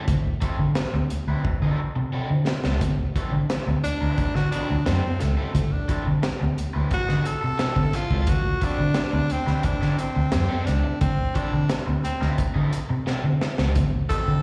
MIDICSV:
0, 0, Header, 1, 7, 480
1, 0, Start_track
1, 0, Tempo, 684151
1, 58, Time_signature, 4, 2, 24, 8
1, 10120, End_track
2, 0, Start_track
2, 0, Title_t, "Overdriven electric guitar"
2, 0, Program_c, 0, 29
2, 287, Note_on_c, 0, 54, 86
2, 288, Note_on_c, 0, 60, 84
2, 296, Note_on_c, 0, 64, 87
2, 296, Note_on_c, 0, 69, 99
2, 392, Note_off_c, 0, 54, 0
2, 393, Note_off_c, 0, 60, 0
2, 397, Note_off_c, 0, 64, 0
2, 397, Note_off_c, 0, 69, 0
2, 899, Note_on_c, 0, 71, 86
2, 905, Note_on_c, 0, 64, 94
2, 908, Note_on_c, 0, 60, 84
2, 910, Note_on_c, 0, 54, 74
2, 998, Note_off_c, 0, 71, 0
2, 1001, Note_off_c, 0, 64, 0
2, 1002, Note_off_c, 0, 60, 0
2, 1003, Note_off_c, 0, 54, 0
2, 1140, Note_on_c, 0, 69, 96
2, 1144, Note_on_c, 0, 64, 91
2, 1147, Note_on_c, 0, 54, 83
2, 1149, Note_on_c, 0, 60, 79
2, 1248, Note_off_c, 0, 54, 0
2, 1252, Note_off_c, 0, 64, 0
2, 1253, Note_off_c, 0, 60, 0
2, 1254, Note_off_c, 0, 69, 0
2, 1492, Note_on_c, 0, 54, 65
2, 1497, Note_on_c, 0, 60, 67
2, 1500, Note_on_c, 0, 64, 75
2, 1504, Note_on_c, 0, 69, 65
2, 1594, Note_off_c, 0, 54, 0
2, 1596, Note_off_c, 0, 60, 0
2, 1598, Note_off_c, 0, 64, 0
2, 1600, Note_off_c, 0, 69, 0
2, 1861, Note_on_c, 0, 69, 64
2, 1862, Note_on_c, 0, 64, 51
2, 1866, Note_on_c, 0, 60, 58
2, 1870, Note_on_c, 0, 54, 51
2, 1936, Note_off_c, 0, 69, 0
2, 1937, Note_off_c, 0, 64, 0
2, 1939, Note_off_c, 0, 60, 0
2, 1941, Note_off_c, 0, 54, 0
2, 2220, Note_on_c, 0, 54, 74
2, 2227, Note_on_c, 0, 60, 70
2, 2228, Note_on_c, 0, 64, 76
2, 2230, Note_on_c, 0, 69, 78
2, 2317, Note_off_c, 0, 54, 0
2, 2321, Note_off_c, 0, 60, 0
2, 2321, Note_off_c, 0, 64, 0
2, 2322, Note_off_c, 0, 69, 0
2, 2812, Note_on_c, 0, 71, 102
2, 2817, Note_on_c, 0, 60, 69
2, 2818, Note_on_c, 0, 64, 90
2, 2823, Note_on_c, 0, 54, 69
2, 2953, Note_off_c, 0, 71, 0
2, 2955, Note_off_c, 0, 60, 0
2, 2956, Note_off_c, 0, 64, 0
2, 2959, Note_off_c, 0, 54, 0
2, 3168, Note_on_c, 0, 54, 78
2, 3172, Note_on_c, 0, 60, 83
2, 3175, Note_on_c, 0, 64, 88
2, 3179, Note_on_c, 0, 69, 75
2, 3281, Note_off_c, 0, 69, 0
2, 3285, Note_off_c, 0, 64, 0
2, 3288, Note_off_c, 0, 60, 0
2, 3310, Note_off_c, 0, 54, 0
2, 3408, Note_on_c, 0, 54, 67
2, 3412, Note_on_c, 0, 60, 69
2, 3417, Note_on_c, 0, 64, 72
2, 3418, Note_on_c, 0, 69, 85
2, 3510, Note_off_c, 0, 54, 0
2, 3512, Note_off_c, 0, 60, 0
2, 3515, Note_off_c, 0, 64, 0
2, 3515, Note_off_c, 0, 69, 0
2, 3770, Note_on_c, 0, 69, 60
2, 3775, Note_on_c, 0, 64, 58
2, 3778, Note_on_c, 0, 60, 50
2, 3781, Note_on_c, 0, 54, 47
2, 3849, Note_off_c, 0, 69, 0
2, 3852, Note_off_c, 0, 64, 0
2, 3853, Note_off_c, 0, 60, 0
2, 3855, Note_off_c, 0, 54, 0
2, 4127, Note_on_c, 0, 54, 78
2, 4133, Note_on_c, 0, 64, 97
2, 4134, Note_on_c, 0, 60, 75
2, 4140, Note_on_c, 0, 69, 96
2, 4229, Note_off_c, 0, 54, 0
2, 4232, Note_off_c, 0, 64, 0
2, 4233, Note_off_c, 0, 60, 0
2, 4236, Note_off_c, 0, 69, 0
2, 4727, Note_on_c, 0, 71, 102
2, 4732, Note_on_c, 0, 64, 87
2, 4735, Note_on_c, 0, 60, 76
2, 4740, Note_on_c, 0, 54, 72
2, 4829, Note_off_c, 0, 71, 0
2, 4831, Note_off_c, 0, 64, 0
2, 4833, Note_off_c, 0, 60, 0
2, 4835, Note_off_c, 0, 54, 0
2, 4966, Note_on_c, 0, 69, 89
2, 4972, Note_on_c, 0, 64, 81
2, 4976, Note_on_c, 0, 60, 81
2, 4979, Note_on_c, 0, 54, 66
2, 5075, Note_off_c, 0, 54, 0
2, 5079, Note_off_c, 0, 60, 0
2, 5081, Note_off_c, 0, 64, 0
2, 5086, Note_off_c, 0, 69, 0
2, 5316, Note_on_c, 0, 54, 85
2, 5326, Note_on_c, 0, 60, 77
2, 5327, Note_on_c, 0, 64, 72
2, 5328, Note_on_c, 0, 69, 83
2, 5423, Note_off_c, 0, 54, 0
2, 5428, Note_off_c, 0, 60, 0
2, 5429, Note_off_c, 0, 64, 0
2, 5429, Note_off_c, 0, 69, 0
2, 5692, Note_on_c, 0, 69, 61
2, 5695, Note_on_c, 0, 64, 50
2, 5697, Note_on_c, 0, 60, 53
2, 5701, Note_on_c, 0, 54, 49
2, 5769, Note_off_c, 0, 69, 0
2, 5771, Note_off_c, 0, 64, 0
2, 5772, Note_off_c, 0, 60, 0
2, 5774, Note_off_c, 0, 54, 0
2, 6040, Note_on_c, 0, 54, 69
2, 6044, Note_on_c, 0, 60, 84
2, 6048, Note_on_c, 0, 64, 93
2, 6053, Note_on_c, 0, 69, 85
2, 6145, Note_off_c, 0, 54, 0
2, 6147, Note_off_c, 0, 60, 0
2, 6149, Note_off_c, 0, 64, 0
2, 6152, Note_off_c, 0, 69, 0
2, 6642, Note_on_c, 0, 71, 96
2, 6644, Note_on_c, 0, 64, 79
2, 6649, Note_on_c, 0, 60, 78
2, 6651, Note_on_c, 0, 54, 78
2, 6746, Note_off_c, 0, 71, 0
2, 6747, Note_off_c, 0, 64, 0
2, 6750, Note_off_c, 0, 60, 0
2, 6751, Note_off_c, 0, 54, 0
2, 6883, Note_on_c, 0, 69, 82
2, 6885, Note_on_c, 0, 64, 99
2, 6889, Note_on_c, 0, 60, 78
2, 6894, Note_on_c, 0, 54, 80
2, 6987, Note_off_c, 0, 69, 0
2, 6988, Note_off_c, 0, 64, 0
2, 6990, Note_off_c, 0, 60, 0
2, 6992, Note_off_c, 0, 54, 0
2, 7360, Note_on_c, 0, 69, 90
2, 7363, Note_on_c, 0, 64, 81
2, 7364, Note_on_c, 0, 60, 75
2, 7368, Note_on_c, 0, 54, 66
2, 7466, Note_off_c, 0, 69, 0
2, 7467, Note_off_c, 0, 60, 0
2, 7467, Note_off_c, 0, 64, 0
2, 7470, Note_off_c, 0, 54, 0
2, 7960, Note_on_c, 0, 54, 82
2, 7963, Note_on_c, 0, 60, 83
2, 7966, Note_on_c, 0, 64, 99
2, 7971, Note_on_c, 0, 69, 102
2, 8066, Note_off_c, 0, 54, 0
2, 8067, Note_off_c, 0, 60, 0
2, 8069, Note_off_c, 0, 64, 0
2, 8071, Note_off_c, 0, 69, 0
2, 8564, Note_on_c, 0, 71, 92
2, 8567, Note_on_c, 0, 64, 85
2, 8569, Note_on_c, 0, 60, 86
2, 8576, Note_on_c, 0, 54, 76
2, 8678, Note_off_c, 0, 54, 0
2, 8681, Note_off_c, 0, 60, 0
2, 8685, Note_off_c, 0, 64, 0
2, 8692, Note_off_c, 0, 71, 0
2, 8799, Note_on_c, 0, 69, 92
2, 8804, Note_on_c, 0, 64, 81
2, 8805, Note_on_c, 0, 60, 74
2, 8810, Note_on_c, 0, 54, 68
2, 8918, Note_off_c, 0, 54, 0
2, 8919, Note_off_c, 0, 60, 0
2, 8922, Note_off_c, 0, 64, 0
2, 8926, Note_off_c, 0, 69, 0
2, 9165, Note_on_c, 0, 54, 72
2, 9169, Note_on_c, 0, 60, 68
2, 9171, Note_on_c, 0, 64, 80
2, 9173, Note_on_c, 0, 69, 80
2, 9269, Note_off_c, 0, 54, 0
2, 9271, Note_off_c, 0, 60, 0
2, 9272, Note_off_c, 0, 64, 0
2, 9273, Note_off_c, 0, 69, 0
2, 9535, Note_on_c, 0, 69, 60
2, 9541, Note_on_c, 0, 64, 58
2, 9542, Note_on_c, 0, 60, 51
2, 9545, Note_on_c, 0, 54, 48
2, 9613, Note_off_c, 0, 69, 0
2, 9616, Note_off_c, 0, 60, 0
2, 9616, Note_off_c, 0, 64, 0
2, 9618, Note_off_c, 0, 54, 0
2, 9887, Note_on_c, 0, 54, 77
2, 9892, Note_on_c, 0, 60, 77
2, 9897, Note_on_c, 0, 64, 78
2, 9897, Note_on_c, 0, 69, 75
2, 10032, Note_off_c, 0, 54, 0
2, 10034, Note_off_c, 0, 60, 0
2, 10037, Note_off_c, 0, 64, 0
2, 10037, Note_off_c, 0, 69, 0
2, 10120, End_track
3, 0, Start_track
3, 0, Title_t, "Tenor saxophone"
3, 0, Program_c, 1, 66
3, 2690, Note_on_c, 1, 62, 106
3, 3053, Note_on_c, 1, 66, 100
3, 3063, Note_off_c, 1, 62, 0
3, 3162, Note_off_c, 1, 66, 0
3, 3167, Note_on_c, 1, 62, 102
3, 3405, Note_on_c, 1, 60, 89
3, 3415, Note_off_c, 1, 62, 0
3, 3651, Note_on_c, 1, 57, 80
3, 3662, Note_off_c, 1, 60, 0
3, 4015, Note_on_c, 1, 62, 84
3, 4025, Note_off_c, 1, 57, 0
3, 4253, Note_off_c, 1, 62, 0
3, 4867, Note_on_c, 1, 66, 111
3, 5098, Note_on_c, 1, 69, 113
3, 5108, Note_off_c, 1, 66, 0
3, 5578, Note_on_c, 1, 65, 97
3, 5588, Note_off_c, 1, 69, 0
3, 5814, Note_on_c, 1, 66, 100
3, 5824, Note_off_c, 1, 65, 0
3, 6062, Note_on_c, 1, 62, 98
3, 6072, Note_off_c, 1, 66, 0
3, 6538, Note_on_c, 1, 60, 98
3, 6548, Note_off_c, 1, 62, 0
3, 6768, Note_on_c, 1, 62, 91
3, 6779, Note_off_c, 1, 60, 0
3, 7005, Note_on_c, 1, 60, 96
3, 7016, Note_off_c, 1, 62, 0
3, 7480, Note_on_c, 1, 62, 83
3, 7490, Note_off_c, 1, 60, 0
3, 7721, Note_off_c, 1, 62, 0
3, 7725, Note_on_c, 1, 60, 90
3, 7968, Note_on_c, 1, 62, 90
3, 7978, Note_off_c, 1, 60, 0
3, 8259, Note_off_c, 1, 62, 0
3, 8446, Note_on_c, 1, 60, 80
3, 8672, Note_off_c, 1, 60, 0
3, 9886, Note_on_c, 1, 69, 103
3, 10120, Note_off_c, 1, 69, 0
3, 10120, End_track
4, 0, Start_track
4, 0, Title_t, "Fingered electric bass"
4, 0, Program_c, 2, 33
4, 57, Note_on_c, 2, 38, 112
4, 153, Note_off_c, 2, 38, 0
4, 415, Note_on_c, 2, 50, 92
4, 512, Note_off_c, 2, 50, 0
4, 657, Note_on_c, 2, 38, 98
4, 753, Note_off_c, 2, 38, 0
4, 894, Note_on_c, 2, 38, 84
4, 991, Note_off_c, 2, 38, 0
4, 1136, Note_on_c, 2, 50, 96
4, 1232, Note_off_c, 2, 50, 0
4, 1375, Note_on_c, 2, 48, 96
4, 1471, Note_off_c, 2, 48, 0
4, 1617, Note_on_c, 2, 50, 94
4, 1712, Note_off_c, 2, 50, 0
4, 1856, Note_on_c, 2, 37, 92
4, 1951, Note_off_c, 2, 37, 0
4, 1975, Note_on_c, 2, 38, 121
4, 2070, Note_off_c, 2, 38, 0
4, 2331, Note_on_c, 2, 50, 81
4, 2428, Note_off_c, 2, 50, 0
4, 2576, Note_on_c, 2, 38, 96
4, 2671, Note_off_c, 2, 38, 0
4, 2818, Note_on_c, 2, 38, 77
4, 2911, Note_off_c, 2, 38, 0
4, 3057, Note_on_c, 2, 50, 79
4, 3151, Note_off_c, 2, 50, 0
4, 3301, Note_on_c, 2, 38, 94
4, 3393, Note_off_c, 2, 38, 0
4, 3422, Note_on_c, 2, 42, 100
4, 3514, Note_off_c, 2, 42, 0
4, 3663, Note_on_c, 2, 37, 88
4, 3754, Note_off_c, 2, 37, 0
4, 3893, Note_on_c, 2, 38, 107
4, 3988, Note_off_c, 2, 38, 0
4, 4261, Note_on_c, 2, 50, 94
4, 4353, Note_off_c, 2, 50, 0
4, 4500, Note_on_c, 2, 38, 93
4, 4592, Note_off_c, 2, 38, 0
4, 4742, Note_on_c, 2, 38, 82
4, 4833, Note_off_c, 2, 38, 0
4, 4982, Note_on_c, 2, 50, 89
4, 5073, Note_off_c, 2, 50, 0
4, 5221, Note_on_c, 2, 48, 92
4, 5312, Note_off_c, 2, 48, 0
4, 5448, Note_on_c, 2, 50, 75
4, 5544, Note_off_c, 2, 50, 0
4, 5688, Note_on_c, 2, 37, 90
4, 5784, Note_off_c, 2, 37, 0
4, 5809, Note_on_c, 2, 38, 121
4, 5905, Note_off_c, 2, 38, 0
4, 6171, Note_on_c, 2, 50, 83
4, 6266, Note_off_c, 2, 50, 0
4, 6406, Note_on_c, 2, 38, 92
4, 6504, Note_off_c, 2, 38, 0
4, 6645, Note_on_c, 2, 38, 93
4, 6743, Note_off_c, 2, 38, 0
4, 6891, Note_on_c, 2, 50, 81
4, 6986, Note_off_c, 2, 50, 0
4, 7130, Note_on_c, 2, 38, 97
4, 7226, Note_off_c, 2, 38, 0
4, 7253, Note_on_c, 2, 42, 92
4, 7348, Note_off_c, 2, 42, 0
4, 7493, Note_on_c, 2, 37, 92
4, 7588, Note_off_c, 2, 37, 0
4, 7728, Note_on_c, 2, 38, 105
4, 7825, Note_off_c, 2, 38, 0
4, 8091, Note_on_c, 2, 50, 96
4, 8187, Note_off_c, 2, 50, 0
4, 8332, Note_on_c, 2, 38, 90
4, 8427, Note_off_c, 2, 38, 0
4, 8574, Note_on_c, 2, 38, 78
4, 8669, Note_off_c, 2, 38, 0
4, 8809, Note_on_c, 2, 50, 91
4, 8906, Note_off_c, 2, 50, 0
4, 9053, Note_on_c, 2, 48, 89
4, 9149, Note_off_c, 2, 48, 0
4, 9290, Note_on_c, 2, 50, 79
4, 9387, Note_off_c, 2, 50, 0
4, 9533, Note_on_c, 2, 37, 100
4, 9630, Note_off_c, 2, 37, 0
4, 9656, Note_on_c, 2, 38, 127
4, 9751, Note_off_c, 2, 38, 0
4, 10018, Note_on_c, 2, 50, 95
4, 10113, Note_off_c, 2, 50, 0
4, 10120, End_track
5, 0, Start_track
5, 0, Title_t, "Muted fingered electric bass strokes"
5, 299, Note_on_c, 9, 29, 52
5, 369, Note_off_c, 9, 29, 0
5, 1017, Note_on_c, 9, 29, 48
5, 1087, Note_off_c, 9, 29, 0
5, 2216, Note_on_c, 9, 29, 49
5, 2286, Note_off_c, 9, 29, 0
5, 2935, Note_on_c, 9, 29, 48
5, 3005, Note_off_c, 9, 29, 0
5, 4136, Note_on_c, 9, 29, 51
5, 4206, Note_off_c, 9, 29, 0
5, 4853, Note_on_c, 9, 29, 43
5, 4923, Note_off_c, 9, 29, 0
5, 6049, Note_on_c, 9, 29, 55
5, 6119, Note_off_c, 9, 29, 0
5, 6767, Note_on_c, 9, 29, 46
5, 6837, Note_off_c, 9, 29, 0
5, 7968, Note_on_c, 9, 29, 51
5, 8038, Note_off_c, 9, 29, 0
5, 8691, Note_on_c, 9, 29, 48
5, 8761, Note_off_c, 9, 29, 0
5, 9899, Note_on_c, 9, 29, 52
5, 9969, Note_off_c, 9, 29, 0
5, 10120, End_track
6, 0, Start_track
6, 0, Title_t, "Muted overdriven electric guitar strokes"
6, 534, Note_on_c, 9, 29, 43
6, 604, Note_off_c, 9, 29, 0
6, 659, Note_on_c, 9, 29, 49
6, 729, Note_off_c, 9, 29, 0
6, 1022, Note_on_c, 9, 29, 48
6, 1092, Note_off_c, 9, 29, 0
6, 1257, Note_on_c, 9, 29, 44
6, 1327, Note_off_c, 9, 29, 0
6, 1373, Note_on_c, 9, 29, 48
6, 1443, Note_off_c, 9, 29, 0
6, 1738, Note_on_c, 9, 29, 41
6, 1808, Note_off_c, 9, 29, 0
6, 2465, Note_on_c, 9, 29, 38
6, 2536, Note_off_c, 9, 29, 0
6, 2580, Note_on_c, 9, 29, 43
6, 2650, Note_off_c, 9, 29, 0
6, 3048, Note_on_c, 9, 29, 42
6, 3118, Note_off_c, 9, 29, 0
6, 3290, Note_on_c, 9, 29, 43
6, 3360, Note_off_c, 9, 29, 0
6, 3647, Note_on_c, 9, 29, 45
6, 3717, Note_off_c, 9, 29, 0
6, 4369, Note_on_c, 9, 29, 44
6, 4439, Note_off_c, 9, 29, 0
6, 4488, Note_on_c, 9, 29, 44
6, 4558, Note_off_c, 9, 29, 0
6, 4847, Note_on_c, 9, 29, 44
6, 4917, Note_off_c, 9, 29, 0
6, 5084, Note_on_c, 9, 29, 41
6, 5154, Note_off_c, 9, 29, 0
6, 5203, Note_on_c, 9, 29, 47
6, 5274, Note_off_c, 9, 29, 0
6, 5569, Note_on_c, 9, 29, 36
6, 5639, Note_off_c, 9, 29, 0
6, 6284, Note_on_c, 9, 29, 42
6, 6354, Note_off_c, 9, 29, 0
6, 6407, Note_on_c, 9, 29, 37
6, 6478, Note_off_c, 9, 29, 0
6, 6766, Note_on_c, 9, 29, 39
6, 6836, Note_off_c, 9, 29, 0
6, 7008, Note_on_c, 9, 29, 46
6, 7079, Note_off_c, 9, 29, 0
6, 7124, Note_on_c, 9, 29, 42
6, 7195, Note_off_c, 9, 29, 0
6, 7242, Note_on_c, 9, 29, 29
6, 7312, Note_off_c, 9, 29, 0
6, 7479, Note_on_c, 9, 29, 34
6, 7549, Note_off_c, 9, 29, 0
6, 7602, Note_on_c, 9, 29, 45
6, 7672, Note_off_c, 9, 29, 0
6, 8201, Note_on_c, 9, 29, 37
6, 8271, Note_off_c, 9, 29, 0
6, 8324, Note_on_c, 9, 29, 45
6, 8394, Note_off_c, 9, 29, 0
6, 8686, Note_on_c, 9, 29, 36
6, 8756, Note_off_c, 9, 29, 0
6, 8927, Note_on_c, 9, 29, 46
6, 8997, Note_off_c, 9, 29, 0
6, 9045, Note_on_c, 9, 29, 38
6, 9115, Note_off_c, 9, 29, 0
6, 9414, Note_on_c, 9, 29, 38
6, 9484, Note_off_c, 9, 29, 0
6, 10120, End_track
7, 0, Start_track
7, 0, Title_t, "Drums"
7, 54, Note_on_c, 9, 42, 93
7, 55, Note_on_c, 9, 36, 115
7, 124, Note_off_c, 9, 42, 0
7, 125, Note_off_c, 9, 36, 0
7, 291, Note_on_c, 9, 42, 73
7, 296, Note_on_c, 9, 36, 95
7, 361, Note_off_c, 9, 42, 0
7, 366, Note_off_c, 9, 36, 0
7, 528, Note_on_c, 9, 42, 78
7, 529, Note_on_c, 9, 38, 114
7, 598, Note_off_c, 9, 42, 0
7, 599, Note_off_c, 9, 38, 0
7, 773, Note_on_c, 9, 42, 68
7, 844, Note_off_c, 9, 42, 0
7, 1015, Note_on_c, 9, 36, 97
7, 1085, Note_off_c, 9, 36, 0
7, 1735, Note_on_c, 9, 38, 100
7, 1805, Note_off_c, 9, 38, 0
7, 1850, Note_on_c, 9, 38, 89
7, 1921, Note_off_c, 9, 38, 0
7, 1972, Note_on_c, 9, 42, 99
7, 1973, Note_on_c, 9, 36, 98
7, 2042, Note_off_c, 9, 42, 0
7, 2044, Note_off_c, 9, 36, 0
7, 2215, Note_on_c, 9, 36, 85
7, 2216, Note_on_c, 9, 42, 70
7, 2285, Note_off_c, 9, 36, 0
7, 2286, Note_off_c, 9, 42, 0
7, 2453, Note_on_c, 9, 42, 83
7, 2455, Note_on_c, 9, 38, 103
7, 2524, Note_off_c, 9, 42, 0
7, 2525, Note_off_c, 9, 38, 0
7, 2697, Note_on_c, 9, 42, 65
7, 2767, Note_off_c, 9, 42, 0
7, 2930, Note_on_c, 9, 42, 70
7, 2933, Note_on_c, 9, 36, 88
7, 3000, Note_off_c, 9, 42, 0
7, 3003, Note_off_c, 9, 36, 0
7, 3055, Note_on_c, 9, 38, 32
7, 3125, Note_off_c, 9, 38, 0
7, 3173, Note_on_c, 9, 42, 73
7, 3243, Note_off_c, 9, 42, 0
7, 3411, Note_on_c, 9, 42, 82
7, 3412, Note_on_c, 9, 38, 107
7, 3482, Note_off_c, 9, 38, 0
7, 3482, Note_off_c, 9, 42, 0
7, 3651, Note_on_c, 9, 38, 31
7, 3651, Note_on_c, 9, 42, 66
7, 3721, Note_off_c, 9, 38, 0
7, 3721, Note_off_c, 9, 42, 0
7, 3892, Note_on_c, 9, 36, 102
7, 3893, Note_on_c, 9, 42, 98
7, 3963, Note_off_c, 9, 36, 0
7, 3963, Note_off_c, 9, 42, 0
7, 4130, Note_on_c, 9, 42, 63
7, 4133, Note_on_c, 9, 36, 94
7, 4200, Note_off_c, 9, 42, 0
7, 4203, Note_off_c, 9, 36, 0
7, 4371, Note_on_c, 9, 42, 74
7, 4372, Note_on_c, 9, 38, 112
7, 4441, Note_off_c, 9, 42, 0
7, 4442, Note_off_c, 9, 38, 0
7, 4616, Note_on_c, 9, 42, 64
7, 4686, Note_off_c, 9, 42, 0
7, 4846, Note_on_c, 9, 42, 66
7, 4850, Note_on_c, 9, 36, 86
7, 4916, Note_off_c, 9, 42, 0
7, 4921, Note_off_c, 9, 36, 0
7, 4973, Note_on_c, 9, 38, 30
7, 5043, Note_off_c, 9, 38, 0
7, 5089, Note_on_c, 9, 42, 66
7, 5159, Note_off_c, 9, 42, 0
7, 5327, Note_on_c, 9, 38, 106
7, 5327, Note_on_c, 9, 42, 85
7, 5397, Note_off_c, 9, 38, 0
7, 5397, Note_off_c, 9, 42, 0
7, 5446, Note_on_c, 9, 36, 90
7, 5516, Note_off_c, 9, 36, 0
7, 5566, Note_on_c, 9, 38, 31
7, 5566, Note_on_c, 9, 42, 72
7, 5636, Note_off_c, 9, 38, 0
7, 5636, Note_off_c, 9, 42, 0
7, 5687, Note_on_c, 9, 36, 88
7, 5757, Note_off_c, 9, 36, 0
7, 5800, Note_on_c, 9, 42, 97
7, 5806, Note_on_c, 9, 36, 115
7, 5871, Note_off_c, 9, 42, 0
7, 5876, Note_off_c, 9, 36, 0
7, 6044, Note_on_c, 9, 42, 71
7, 6047, Note_on_c, 9, 36, 80
7, 6115, Note_off_c, 9, 42, 0
7, 6117, Note_off_c, 9, 36, 0
7, 6275, Note_on_c, 9, 42, 73
7, 6276, Note_on_c, 9, 38, 109
7, 6345, Note_off_c, 9, 42, 0
7, 6346, Note_off_c, 9, 38, 0
7, 6523, Note_on_c, 9, 42, 71
7, 6593, Note_off_c, 9, 42, 0
7, 6645, Note_on_c, 9, 38, 34
7, 6715, Note_off_c, 9, 38, 0
7, 6758, Note_on_c, 9, 42, 78
7, 6765, Note_on_c, 9, 36, 90
7, 6828, Note_off_c, 9, 42, 0
7, 6835, Note_off_c, 9, 36, 0
7, 6887, Note_on_c, 9, 38, 30
7, 6958, Note_off_c, 9, 38, 0
7, 7005, Note_on_c, 9, 42, 66
7, 7076, Note_off_c, 9, 42, 0
7, 7239, Note_on_c, 9, 38, 114
7, 7239, Note_on_c, 9, 42, 92
7, 7309, Note_off_c, 9, 38, 0
7, 7309, Note_off_c, 9, 42, 0
7, 7484, Note_on_c, 9, 42, 73
7, 7485, Note_on_c, 9, 38, 33
7, 7555, Note_off_c, 9, 38, 0
7, 7555, Note_off_c, 9, 42, 0
7, 7724, Note_on_c, 9, 42, 83
7, 7727, Note_on_c, 9, 36, 117
7, 7794, Note_off_c, 9, 42, 0
7, 7797, Note_off_c, 9, 36, 0
7, 7964, Note_on_c, 9, 42, 74
7, 7968, Note_on_c, 9, 36, 86
7, 8035, Note_off_c, 9, 42, 0
7, 8038, Note_off_c, 9, 36, 0
7, 8205, Note_on_c, 9, 42, 86
7, 8206, Note_on_c, 9, 38, 105
7, 8275, Note_off_c, 9, 42, 0
7, 8276, Note_off_c, 9, 38, 0
7, 8452, Note_on_c, 9, 42, 72
7, 8522, Note_off_c, 9, 42, 0
7, 8572, Note_on_c, 9, 38, 35
7, 8642, Note_off_c, 9, 38, 0
7, 8686, Note_on_c, 9, 42, 75
7, 8689, Note_on_c, 9, 36, 81
7, 8756, Note_off_c, 9, 42, 0
7, 8759, Note_off_c, 9, 36, 0
7, 8928, Note_on_c, 9, 42, 69
7, 8999, Note_off_c, 9, 42, 0
7, 9169, Note_on_c, 9, 38, 52
7, 9239, Note_off_c, 9, 38, 0
7, 9412, Note_on_c, 9, 38, 85
7, 9482, Note_off_c, 9, 38, 0
7, 9530, Note_on_c, 9, 38, 92
7, 9600, Note_off_c, 9, 38, 0
7, 9650, Note_on_c, 9, 42, 93
7, 9654, Note_on_c, 9, 36, 120
7, 9720, Note_off_c, 9, 42, 0
7, 9724, Note_off_c, 9, 36, 0
7, 9895, Note_on_c, 9, 42, 66
7, 9896, Note_on_c, 9, 36, 86
7, 9965, Note_off_c, 9, 42, 0
7, 9966, Note_off_c, 9, 36, 0
7, 10120, End_track
0, 0, End_of_file